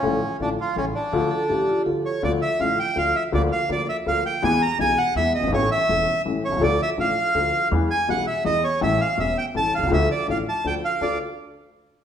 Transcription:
<<
  \new Staff \with { instrumentName = "Bandoneon" } { \time 3/4 \key d \minor \tempo 4 = 164 cis'4 d'8 f'8 cis'8 d'8~ | d'2 r8 cis''8 | d''8 e''8 f''8 g''8 f''8 e''8 | d''8 f''8 d''8 e''8 f''8 g''8 |
gis''8 bes''8 gis''8 fis''8 e''8 ees''8 | cis''8 e''4. r8 cis''8 | d''8 e''8 f''2 | r8 gis''8 fis''8 e''8 ees''8 cis''8 |
e''8 f''8 e''8 g''8 a''8 f''8 | e''8 d''8 f''8 a''8 g''8 f''8 | d''8 r2 r8 | }
  \new Staff \with { instrumentName = "Vibraphone" } { \time 3/4 \key d \minor r2. | r8 a'8 g'8 f'8 a'4 | r2. | r2. |
r2. | r2. | r2. | r2. |
r2. | r2. | r2. | }
  \new Staff \with { instrumentName = "Upright piano" } { \clef bass \time 3/4 \key d \minor <a,, a, d f a f'>8 r8 <a,, a, d f a f'>8 r8 <a,, a, cis e a e'>8 r8 | <d, d f a f'>8 r8 <a,, a, d f a f'>8 r8 <d, d f a f'>8 r8 | <d, d f a f'>8 r8 <a,, a, d f a f'>8 r8 <d, d f a f'>8 r8 | <d, d f bes f'>8 r8 <d, d f bes f'>8 r8 <d, d f bes f'>8 r8 |
<e, e gis b gis'>8 r8 <b,, b, e gis b gis'>8 r8 <e, e gis b gis'>8 r32 fis,,32 g,,32 gis,,32 | <a,, a, e a cis' a'>8 r8 <e,, e, e a cis' a'>8 r8 <a,, a, e a cis' a'>8 r32 b,,32 c,32 cis,32 | <d, d f a d' a'>8 r8 <a,, a, f a d' a'>8 r8 <d, d f a d' a'>8 r8 | <e, e gis b gis'>8 r8 <b,, b, e gis b gis'>8 r8 <e, e gis b gis'>8 r8 |
<a,, a, e a cis' a'>8 r8 <e,, e, e a cis' a'>8 r8 <a,, a, e a cis' a'>8 r32 b,,32 c,32 cis,32 | <d, d f a d' a'>8 r8 <a,, a, f a d' a'>8 r8 <d, d f a d' a'>8 r8 | <d, d' f' a'>8 r2 r8 | }
  \new Staff \with { instrumentName = "Upright bass" } { \clef bass \time 3/4 \key d \minor a,,16. r8 r32 a,,16. r8 r32 a,,16. r8 r32 | d,16. r8 r32 a,,16. r8 r32 d,16. r8 r32 | d,16. r8 r32 a,,16. r8 r32 d,16. r8 r32 | d,16. r8 r32 d,16. r8 r32 d,16. r8 r32 |
e,16. r8 r32 b,,16. r8 r32 e,16. r16 fis,,32 g,,32 gis,,32 | a,,16. r8 r32 e,,16. r8 r32 a,,16. r16 b,,32 c,32 cis,32 | d,16. r8 r32 a,,16. r8 r32 d,16. r8 r32 | e,16. r8 r32 b,,16. r8 r32 e,16. r8 r32 |
a,,16. r8 r32 e,,16. r8 r32 a,,16. r16 b,,32 c,32 cis,32 | d,16. r8 r32 a,,16. r8 r32 d,16. r8 r32 | d,8 r2 r8 | }
>>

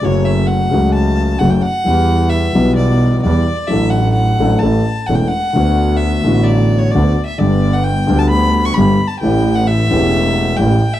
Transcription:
<<
  \new Staff \with { instrumentName = "Violin" } { \time 4/4 \key d \major \tempo 4 = 131 cis''8 e''8 fis''4 a''4 fis''16 g''16 fis''8~ | fis''4 e''4 d''4 d''4 | e''8 fis''8 fis''4 a''4 fis''16 g''16 fis''8~ | fis''4 e''4 d''8. cis''16 d''8. e''16 |
d''8. fis''16 g''8. a''16 b''8. cis'''16 b''8. a''16 | g''8. fis''16 e''2 g''8. e''16 | }
  \new Staff \with { instrumentName = "Grand piano" } { \clef bass \time 4/4 \key d \major <fis, cis fis a fis'>4. <cis, cis fis a fis'>4. <fis, cis fis a fis'>8 r8 | <e, e g b g'>4. <b,, b, e g b g'>4. <e, e g b g'>8 r8 | <a,, a, fis a d' a'>4. <a,, a, fis a d' a'>8 <a,, a, e a cis' a'>8 r8 <e,, e, e a cis' a'>8 r8 | <d, d a b fis'>4. <a,, a, d a b fis'>4. <d, d a b fis'>8 r8 |
<g,, g, d g b g'>4. <d, d g b g'>4. <g,, g, d g b g'>8 r8 | <a,, a, e a cis' g'>4. <e,, e, e a cis' g'>4. <a,, a, e a cis' g'>8 r8 | }
  \new Staff \with { instrumentName = "Double bass" } { \clef bass \time 4/4 \key d \major fis,,4. cis,4. fis,,8 r8 | e,4. b,,4. e,8 r8 | a,,4. a,,8 a,,8 r8 e,,8 r8 | d,4. a,,4. d,8 r8 |
g,,4. d,4. g,,8 r8 | a,,4. e,,4. a,,8 r8 | }
>>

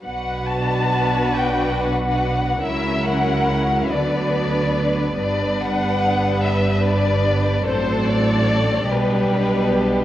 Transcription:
<<
  \new Staff \with { instrumentName = "Violin section" } { \time 6/8 \key b \minor \tempo 4. = 47 fis''8 a''4 g''8 fis''4 | e''8 fis''4 d''4. | d''8 fis''4 e''8 d''4 | c''8 d''4 b'4. | }
  \new Staff \with { instrumentName = "Violin section" } { \time 6/8 \key b \minor <fis' b'>2. | <e' ais'>4. <d' b'>4. | <d' b'>2. | <d' a'>4. <d' g'>4. | }
  \new Staff \with { instrumentName = "Viola section" } { \time 6/8 \key b \minor <fis d'>2. | <fis cis'>4. <fis b>4. | <g b>2. | <fis c'>4. <g b>4. | }
  \new Staff \with { instrumentName = "Cello section" } { \clef bass \time 6/8 \key b \minor b,2. | cis4. d4. | g,2. | a,4. b,4. | }
  \new Staff \with { instrumentName = "Double bass section" } { \clef bass \time 6/8 \key b \minor b,,2. | cis,4. d,4. | g,,2. | a,,4. b,,4. | }
>>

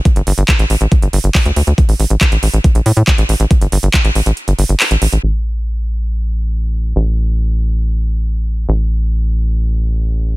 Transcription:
<<
  \new Staff \with { instrumentName = "Analog synth bass" } { \clef bass \time 4/4 \key g \dorian \tempo 4 = 139 r16 g,,16 g,,16 g,,16 r16 a,,16 a,,16 a,,16 r16 g,,16 g,,16 g,,16 r16 d,16 d,16 d,16 | r16 a,,16 a,,16 a,,16 r16 a,,16 a,,16 a,,16 r16 bes,,16 a,16 a,16 r16 a,,16 a,,16 a,,16 | r16 g,,16 g,,16 g,,16 r16 a,,16 a,,16 a,,16 r16 g,,16 g,,16 g,,16 r16 a,,16 a,,16 a,,16 | a,,1 |
a,,1 | a,,1 | }
  \new DrumStaff \with { instrumentName = "Drums" } \drummode { \time 4/4 <hh bd>16 hh16 hho16 hh16 <hc hh bd>16 hh16 hho16 hh16 <hh bd>16 hh16 hho16 hh16 <hc hho bd>16 hh16 hho16 hh16 | <hh bd>16 hho16 hho16 hh16 <hc hh bd>16 hh16 hho16 hh16 <hh bd>16 hh16 hho16 hh16 <hc hh bd>16 hh16 hho16 hh16 | <hh bd>16 hh16 hho16 hh16 <hc hh bd>16 hh16 hho16 hh16 hh16 hh16 hho16 hh16 <hc hho>16 hh16 hho16 hh16 | r4 r4 r4 r4 |
r4 r4 r4 r4 | r4 r4 r4 r4 | }
>>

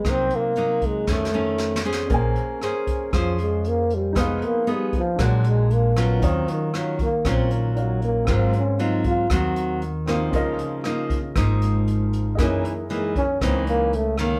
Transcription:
<<
  \new Staff \with { instrumentName = "Grand piano" } { \time 4/4 \key bes \minor \tempo 4 = 117 r1 | <des' bes' c'' aes''>1 | <ees' aes' ces'' f''>2 <d' aes' bes' fis''>2 | <ees' des'' f''>2. <ees' des'' f''>4 |
<c' bes' f''>2.~ <c' bes' f''>8 <c' ges' bes' f''>8 | <des' f' bes' ees''>1 | <fes' aes' bes' ees''>1 | }
  \new Staff \with { instrumentName = "Nylon-string guitar" } { \time 4/4 \key bes \minor << { <ges bes ees'>4 <ges bes ees'>4 <ees a cis'>8 <ees a cis'>4 <cis' gis' c''>8~ | <cis' gis' c''>4 <des' aes' c''>4 <des' aes' c''>4. r8 | <ces' ees' aes'>4 <ces' ees' aes'>8 r8 <aes d' fis'>4. <fis cis' f'>8~ | <fis cis' f'>4 <ges des' f'>8 r8 <ges des' f'>2 |
<ges c' f'>8 r8 <ges c' f'>4 <ges c'>4 r8 <f bes ees'>8~ | <f bes ees'>4 <f bes ees'>8 r8 <f bes ees'>2 | <fes bes ees'>8 r8 <fes bes ees'>8 r8 <fes bes ees'>4 r8 <ees bes des'>8 | } \\ { c2 f,2 | bes2 f2 | f2 bes,2 | ees2 bes,2 |
aes,2 ees2 | des2 aes,2 | ges,2 des2 | } >> }
  \new Staff \with { instrumentName = "Trombone" } { \time 4/4 \key bes \minor c'8 bes4 aes8 a4. r8 | r2 f8 aes8 bes8 g8 | aes8 bes8 g8 f8 fis8 aes8 bes8 ces'8 | c'8 ees8 ges8 bes8 c'8 ees8 ges8 bes8 |
c'8 des'8 ees'8 f'8 ges'4 r4 | r1 | des'8 fes8 aes8 des'8 c'8 bes8 a8 bes8 | }
  \new Staff \with { instrumentName = "Upright bass" } { \clef bass \time 4/4 \key bes \minor c,8 r4. f,2 | bes,,8 r4. f,2 | f,,8 r4. bes,,2 | ees,8 r4. bes,,2 |
aes,,8 r4. ees,2 | des,8 r4. aes,,2 | ges,8 r4. des,2 | }
  \new DrumStaff \with { instrumentName = "Drums" } \drummode { \time 4/4 <hh bd ss>8 hh8 hh8 <hh bd>8 \tuplet 3/2 { <bd sn>8 sn8 r8 sn8 sn8 sn8 } | <hh bd>8 hh8 <hh ss>8 <hh bd>8 <hh bd ss>8 hh8 hh8 hh8 | <hh bd ss>8 hh8 hh8 <hh bd>8 <hh bd ss>8 hh8 hh8 <hh ss>8 | <hh bd>8 hh8 <hh ss>8 <hh bd>8 <hh bd ss>8 hh8 hh8 hh8 |
<hh bd ss>8 hh8 hh8 <hh bd>8 <hh bd ss>8 hh8 hh8 <hh ss>8 | <hh bd>8 hh8 <hh ss>8 <hh bd>8 <hh bd ss>8 hh8 hh8 hh8 | <hh bd ss>8 hh8 hh8 <hh bd>8 <hh bd ss>8 hh8 hh8 <hh ss>8 | }
>>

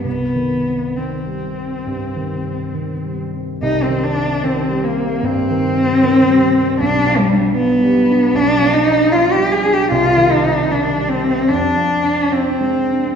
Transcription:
<<
  \new Staff \with { instrumentName = "Cello" } { \time 4/4 \key c \minor \tempo 4 = 75 b4 c'2~ c'8 r8 | ees'16 c'16 d'8 c'8 bes8 c'2 | d'8 g8 b4 d'8 ees'8 f'16 g'16 aes'16 g'16 | f'8 ees'8 d'8 c'8 d'4 c'4 | }
  \new Staff \with { instrumentName = "Grand piano" } { \clef bass \time 4/4 \key c \minor \tuplet 3/2 { c,8 ees8 c'8 ees8 g4 g,8 ees8 c'8 ees8 g8 c'8 } | \tuplet 3/2 { c,8 ees8 c'8 ees8 g8 c'8 g,8 ees8 c'8 ees8 g8 c'8 } | \tuplet 3/2 { b,,8 f8 d'8 f8 g8 d'8 b,,8 f8 d'8 f8 g8 d'8 } | \tuplet 3/2 { c,8 ees8 c'8 ees8 g8 c'8 f,8 f8 d'8 f8 aes8 d'8 } | }
>>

